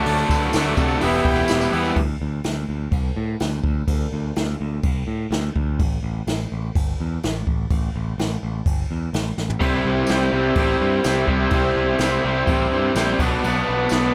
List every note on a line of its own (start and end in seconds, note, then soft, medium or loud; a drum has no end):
0.00 0.52 D3 loud
0.00 0.54 F#3 medium
0.00 0.54 A3 loud
0.00 0.55 D4 loud
0.00 0.23 F#4 medium
0.00 0.24 A4 medium
0.00 0.23 D5 loud
0.06 0.23 D2 loud
0.06 open hi-hat medium
0.06 tambourine soft
0.18 tambourine soft
0.29 0.46 D2 medium
0.29 0.51 F#4 medium
0.29 0.51 A4 medium
0.29 0.52 B4 medium
0.29 kick medium
0.29 open hi-hat medium
0.29 tambourine medium
0.43 tambourine soft
0.53 0.71 D2 loud
0.53 1.00 D3 medium
0.53 1.01 F#3 medium
0.53 1.02 A3 medium
0.53 0.75 F#4 medium
0.53 0.75 A4 medium
0.53 0.75 D5 loud
0.53 snare loud
0.53 open hi-hat medium
0.53 tambourine medium
0.57 1.02 D4 medium
0.66 tambourine soft
0.77 0.95 C3 medium
0.77 0.99 F#4 medium
0.77 0.98 A4 medium
0.77 0.98 E5 loud
0.77 kick loud
0.77 open hi-hat medium
0.77 tambourine medium
0.88 tambourine soft
1.00 1.19 E1 loud
1.00 1.71 E3 medium
1.00 1.72 G3 loud
1.00 1.72 B3 loud
1.00 1.23 G4 loud
1.00 1.23 E5 loud
1.00 open hi-hat loud
1.00 tambourine soft
1.04 1.71 E4 loud
1.04 1.23 B4 loud
1.24 1.42 E1 medium
1.24 1.45 G4 medium
1.24 1.45 B4 medium
1.24 1.45 G5 loud
1.24 kick medium
1.24 open hi-hat medium
1.36 tambourine soft
1.48 1.67 E1 loud
1.48 1.69 G4 medium
1.48 1.70 B4 medium
1.48 1.69 E5 medium
1.48 snare loud
1.48 open hi-hat medium
1.48 tambourine loud
1.61 tambourine medium
1.71 1.90 E2 medium
1.71 1.97 G3 medium
1.71 1.96 B3 medium
1.71 1.95 E4 medium
1.71 1.93 G4 medium
1.71 1.93 B4 medium
1.71 1.93 E5 medium
1.71 open hi-hat medium
1.76 1.97 E3 medium
1.85 tambourine soft
1.96 2.15 D2 medium
1.96 kick loud
1.96 crash medium
2.22 2.39 D2 medium
2.44 2.63 D2 medium
2.44 snare loud
2.44 crash medium
2.69 2.87 D2 medium
2.91 3.10 C2 medium
2.91 kick loud
2.91 crash medium
3.17 3.35 A2 medium
3.40 3.59 D2 loud
3.40 snare loud
3.40 crash medium
3.64 3.82 D2 medium
3.64 kick medium
3.88 4.06 D2 medium
3.88 kick loud
3.88 crash medium
4.13 4.30 D2 medium
4.36 4.55 D2 medium
4.36 snare loud
4.36 crash medium
4.61 4.78 D2 medium
4.83 5.02 C2 medium
4.83 kick loud
4.83 crash medium
5.07 5.25 A2 medium
5.31 5.49 D2 loud
5.31 snare loud
5.31 crash medium
5.56 5.81 D2 medium
5.56 kick medium
5.79 5.97 A1 medium
5.79 kick loud
5.79 crash medium
6.03 6.21 A1 medium
6.27 6.45 A1 medium
6.27 snare loud
6.27 crash medium
6.52 6.70 A1 medium
6.75 6.93 G1 loud
6.75 kick loud
6.75 crash medium
7.00 7.18 E2 medium
7.23 7.42 A1 loud
7.23 snare loud
7.23 crash medium
7.47 7.65 A1 medium
7.47 kick medium
7.70 7.88 A1 medium
7.70 kick loud
7.70 crash medium
7.96 8.13 A1 loud
8.18 8.36 A1 medium
8.18 snare loud
8.18 crash medium
8.43 8.61 A1 medium
8.66 8.84 G1 loud
8.66 kick loud
8.66 crash medium
8.91 9.08 E2 medium
9.13 9.31 A1 loud
9.13 snare loud
9.13 crash medium
9.38 9.56 A1 loud
9.38 snare medium
9.50 floor tom medium
9.60 9.79 C2 medium
9.60 10.08 C3 medium
9.60 10.09 G3 medium
9.60 10.09 C4 loud
9.60 10.10 E4 loud
9.60 9.81 G4 loud
9.60 9.81 C5 loud
9.60 9.82 E5 loud
9.60 kick loud
9.60 crash medium
9.85 10.03 C2 medium
9.85 10.06 G4 medium
9.85 10.06 C5 medium
9.85 10.06 E5 medium
10.07 10.27 C2 medium
10.07 10.31 C3 medium
10.07 10.32 G3 loud
10.07 10.32 C4 medium
10.07 10.33 E4 loud
10.07 10.30 G4 medium
10.07 snare loud
10.07 tambourine medium
10.07 crash medium
10.11 10.30 C5 medium
10.11 10.30 G5 loud
10.32 10.51 C2 medium
10.32 10.55 C3 medium
10.32 10.56 G3 loud
10.32 10.56 C4 loud
10.32 10.57 E4 medium
10.32 10.54 G4 medium
10.32 10.54 C5 medium
10.36 10.55 E5 medium
10.55 10.74 A1 medium
10.55 11.03 C3 medium
10.55 11.04 G3 medium
10.55 11.04 C4 medium
10.55 11.05 E4 medium
10.55 10.78 G4 loud
10.55 10.78 C5 loud
10.55 10.77 E5 loud
10.55 kick loud
10.55 crash medium
10.81 10.99 G2 medium
10.81 11.01 G4 medium
10.81 11.01 C5 medium
10.81 11.01 E5 medium
11.04 11.23 C2 loud
11.04 11.26 C3 medium
11.04 11.26 G3 medium
11.04 11.27 C4 medium
11.04 11.27 E4 loud
11.04 11.25 G4 medium
11.04 11.26 C5 medium
11.04 11.25 E5 medium
11.04 snare loud
11.04 tambourine loud
11.04 crash medium
11.27 11.46 C2 medium
11.27 11.51 C3 medium
11.27 11.52 G3 medium
11.27 11.52 C4 medium
11.27 11.53 E4 loud
11.27 11.48 G4 medium
11.27 11.49 C5 medium
11.27 11.49 E5 medium
11.27 kick medium
11.50 11.70 C2 medium
11.50 11.99 C3 medium
11.50 12.00 G3 medium
11.50 12.00 C4 loud
11.50 11.71 G4 loud
11.50 11.71 C5 medium
11.50 11.72 E5 loud
11.50 kick loud
11.50 crash medium
11.54 12.01 E4 loud
11.76 11.94 C2 medium
11.76 11.96 G4 medium
11.76 11.97 C5 medium
11.76 11.97 E5 medium
11.99 12.17 C2 medium
11.99 12.22 C3 medium
11.99 12.22 G3 medium
11.99 12.23 C4 medium
11.99 12.24 E4 loud
11.99 12.21 C5 medium
11.99 12.21 E5 loud
11.99 snare loud
11.99 tambourine medium
11.99 crash medium
12.04 12.22 G4 medium
12.23 12.42 C2 medium
12.23 12.46 C3 medium
12.23 12.47 G3 medium
12.23 12.48 C4 medium
12.23 12.48 E4 medium
12.23 12.44 G4 medium
12.23 12.44 C5 medium
12.23 12.44 E5 medium
12.46 12.66 A1 loud
12.46 12.95 C3 loud
12.46 12.95 G3 loud
12.46 12.96 C4 loud
12.46 12.97 E4 loud
12.46 12.67 G4 loud
12.46 12.67 C5 loud
12.46 12.68 E5 loud
12.46 kick loud
12.46 crash medium
12.72 12.90 G2 loud
12.72 12.92 G4 medium
12.72 12.93 C5 medium
12.72 12.93 E5 loud
12.95 13.13 A#1 loud
12.95 13.18 C3 medium
12.95 13.18 G3 medium
12.95 13.19 C4 loud
12.95 13.19 E4 loud
12.95 13.16 G4 medium
12.95 13.17 C5 medium
12.95 13.16 G5 medium
12.95 snare loud
12.95 tambourine loud
12.95 crash medium
13.19 13.37 B1 medium
13.19 13.43 B2 loud
13.19 13.44 F#3 loud
13.19 13.45 B3 loud
13.19 13.45 D4 loud
13.19 13.60 F#4 medium
13.19 13.60 B4 medium
13.19 13.60 D5 medium
13.19 kick loud
13.19 crash medium
13.44 13.61 B1 medium
13.44 13.91 B2 medium
13.44 13.92 F#3 loud
13.44 13.93 B3 loud
13.44 13.93 D4 loud
13.44 crash medium
13.68 13.86 B1 medium
13.68 13.88 F#4 medium
13.68 13.87 B4 medium
13.68 13.88 D5 medium
13.89 14.09 B1 medium
13.89 14.14 B2 medium
13.89 14.14 F#3 medium
13.89 14.12 F#4 medium
13.89 14.12 B4 medium
13.89 14.12 D5 loud
13.89 snare loud
13.89 tambourine medium
13.89 crash medium
13.93 14.14 B3 medium
13.93 14.14 D4 medium